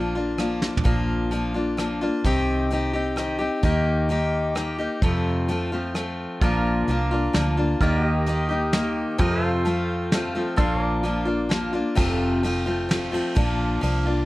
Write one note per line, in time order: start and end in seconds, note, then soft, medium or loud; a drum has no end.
0.00 0.69 A#1 medium
0.00 0.15 F3 medium
0.00 0.15 A#3 medium
0.00 0.16 D4 medium
0.00 0.14 F4 medium
0.15 0.37 A#3 soft
0.15 0.38 D4 soft
0.15 0.39 F4 soft
0.38 0.83 F3 medium
0.38 0.84 A#3 medium
0.38 0.84 D4 medium
0.38 0.85 F4 medium
0.38 cross-stick medium
0.38 closed hi-hat medium
0.62 snare medium
0.77 floor tom medium
0.84 2.09 A#1 medium
0.84 1.31 A#2 medium
0.84 1.30 F3 medium
0.84 1.30 A#3 medium
0.84 1.31 D4 medium
0.84 1.32 F4 medium
0.84 kick loud
0.84 closed hi-hat medium
1.31 1.54 F3 medium
1.31 1.55 A#3 medium
1.31 1.54 D4 medium
1.31 1.53 F4 medium
1.31 closed hi-hat medium
1.54 1.77 A#3 soft
1.54 1.77 D4 soft
1.54 1.78 F4 soft
1.77 2.01 F3 medium
1.77 2.01 A#3 medium
1.77 2.01 D4 medium
1.77 2.00 F4 medium
1.77 cross-stick medium
1.77 closed hi-hat medium
2.01 2.25 A#3 soft
2.01 2.25 D4 soft
2.01 2.24 F4 soft
2.24 3.47 C2 medium
2.24 2.71 C3 medium
2.24 2.69 D#3 medium
2.24 2.70 C4 medium
2.24 2.72 D#4 medium
2.24 2.73 G4 medium
2.24 kick medium
2.24 closed hi-hat medium
2.70 2.94 D#3 medium
2.70 2.94 C4 medium
2.70 2.94 D#4 medium
2.70 2.92 G4 medium
2.70 closed hi-hat medium
2.93 3.16 C4 soft
2.93 3.17 D#4 soft
2.93 3.17 G4 medium
3.16 3.40 D#3 medium
3.16 3.40 C4 medium
3.16 3.39 D#4 medium
3.16 3.37 G4 medium
3.16 cross-stick medium
3.16 closed hi-hat medium
3.39 3.63 C4 soft
3.39 3.63 D#4 soft
3.39 3.63 G4 medium
3.63 4.87 D#2 medium
3.63 4.08 D#3 medium
3.63 4.09 A#3 medium
3.63 4.10 D#4 medium
3.63 4.10 G4 medium
3.63 kick loud
3.63 closed hi-hat medium
4.09 4.54 D#3 medium
4.09 4.55 A#3 medium
4.09 4.56 D#4 medium
4.09 4.57 G4 medium
4.09 closed hi-hat medium
4.55 4.79 D#3 medium
4.55 4.79 A#3 medium
4.55 4.78 D#4 medium
4.55 4.77 G4 medium
4.55 cross-stick medium
4.55 closed hi-hat medium
4.78 5.03 A#3 soft
4.78 5.03 D#4 soft
4.78 5.02 G4 soft
5.02 5.49 F2 medium
5.02 6.25 F2 medium
5.02 5.49 C3 medium
5.02 5.48 F3 medium
5.02 5.48 A3 medium
5.02 5.49 C4 medium
5.02 5.51 F4 medium
5.02 kick loud
5.02 closed hi-hat medium
5.48 5.72 F3 medium
5.48 5.72 A3 medium
5.48 5.72 C4 medium
5.48 5.71 F4 medium
5.48 closed hi-hat medium
5.72 5.93 F3 soft
5.72 5.95 A3 soft
5.72 5.95 C4 soft
5.72 5.95 F4 medium
5.95 6.41 F3 soft
5.95 6.42 A3 medium
5.95 6.42 C4 medium
5.95 6.42 F4 medium
5.95 cross-stick medium
5.95 closed hi-hat medium
6.41 6.82 A#1 medium
6.41 6.88 A#2 medium
6.41 6.87 F3 medium
6.41 6.89 A#3 medium
6.41 6.89 D4 medium
6.41 7.79 F4 medium
6.41 6.89 F4 medium
6.41 7.80 A#4 medium
6.41 7.80 D5 medium
6.41 kick loud
6.41 closed hi-hat soft
6.88 7.27 C2 medium
6.88 7.11 F3 medium
6.88 7.12 A#3 medium
6.88 7.12 D4 medium
6.88 7.10 F4 medium
6.88 closed hi-hat medium
7.11 7.33 A#3 soft
7.11 7.34 D4 soft
7.11 7.34 F4 medium
7.33 7.74 D2 medium
7.33 7.57 F3 medium
7.33 7.57 A#3 medium
7.33 7.57 D4 medium
7.33 7.56 F4 medium
7.33 snare medium
7.33 closed hi-hat medium
7.57 7.80 A#3 soft
7.57 7.81 D4 soft
7.57 7.80 F4 medium
7.80 9.04 D#2 medium
7.80 8.25 D#3 medium
7.80 8.26 A#3 medium
7.80 8.27 D#4 medium
7.80 8.06 F4 medium
7.80 8.28 G4 medium
7.80 9.18 A#4 medium
7.80 8.03 D5 medium
7.80 kick medium
7.80 closed hi-hat medium
8.03 9.18 G4 medium
8.03 9.19 D#5 medium
8.26 8.50 D#3 medium
8.26 8.50 A#3 medium
8.26 8.50 D#4 medium
8.26 8.47 G4 medium
8.26 closed hi-hat medium
8.49 8.72 A#3 soft
8.49 8.73 D#4 soft
8.49 8.73 G4 soft
8.73 9.18 D#3 medium
8.73 9.19 A#3 medium
8.73 9.19 D#4 medium
8.73 9.20 G4 medium
8.73 snare medium
8.73 closed hi-hat medium
9.18 9.65 F2 medium
9.18 10.43 F2 medium
9.18 9.65 C3 medium
9.18 9.65 F3 medium
9.18 9.65 A3 medium
9.18 9.66 C4 medium
9.18 9.67 F4 medium
9.18 9.45 G4 medium
9.18 9.45 A#4 medium
9.18 9.47 D#5 medium
9.18 kick loud
9.18 closed hi-hat medium
9.45 10.57 A4 medium
9.45 10.58 C5 medium
9.45 10.58 F5 medium
9.65 10.11 F3 medium
9.65 10.12 A3 medium
9.65 10.13 C4 medium
9.65 10.14 F4 medium
9.65 closed hi-hat medium
10.12 10.35 F3 medium
10.12 10.35 A3 medium
10.12 10.34 C4 medium
10.12 10.34 F4 medium
10.12 snare medium
10.12 closed hi-hat medium
10.35 10.56 F3 soft
10.35 10.57 A3 soft
10.35 10.58 C4 soft
10.35 10.57 F4 soft
10.56 11.81 A#1 medium
10.56 11.04 A#2 medium
10.56 11.02 F3 medium
10.56 11.02 A#3 medium
10.56 11.03 D4 medium
10.56 11.04 F4 medium
10.56 10.78 A4 medium
10.56 10.84 C5 medium
10.56 11.97 F5 medium
10.56 kick loud
10.56 closed hi-hat medium
10.78 11.96 A#4 medium
10.84 11.96 D5 medium
11.03 11.27 F3 medium
11.03 11.26 A#3 medium
11.03 11.25 D4 medium
11.03 11.24 F4 medium
11.03 closed hi-hat soft
11.25 11.49 A#3 soft
11.25 11.49 D4 soft
11.25 11.50 F4 medium
11.49 11.73 F3 medium
11.49 11.74 A#3 medium
11.49 11.73 D4 medium
11.49 11.72 F4 medium
11.49 snare medium
11.49 closed hi-hat medium
11.73 11.96 A#3 soft
11.73 11.97 D4 soft
11.73 11.96 F4 medium
11.95 13.21 F1 medium
11.95 12.43 F2 medium
11.95 12.43 C3 medium
11.95 12.43 F3 medium
11.95 12.43 A3 medium
11.95 12.43 C4 medium
11.95 12.45 F4 medium
11.95 kick loud
11.95 crash medium
12.43 12.67 F3 medium
12.43 12.67 A3 medium
12.43 12.66 C4 medium
12.43 12.65 F4 medium
12.43 ride medium
12.66 12.88 F3 soft
12.66 12.88 A3 soft
12.66 12.89 C4 soft
12.66 12.90 F4 medium
12.89 13.13 F3 medium
12.89 13.12 A3 medium
12.89 13.12 C4 medium
12.89 13.11 F4 medium
12.89 snare medium
12.89 ride medium
13.12 13.35 F3 soft
13.12 13.36 A3 soft
13.12 13.36 C4 medium
13.12 13.36 F4 medium
13.12 ride medium
13.35 13.78 A#1 medium
13.35 13.82 A#2 medium
13.35 13.80 F3 medium
13.35 13.82 A#3 medium
13.35 13.82 D4 medium
13.35 13.83 F4 medium
13.35 kick loud
13.35 ride medium
13.81 14.22 C2 medium
13.81 14.05 F3 medium
13.81 14.06 A#3 medium
13.81 14.05 D4 medium
13.81 14.04 F4 medium
13.81 ride medium
14.06 14.25 A#3 soft
14.06 14.25 D4 soft
14.06 14.25 F4 soft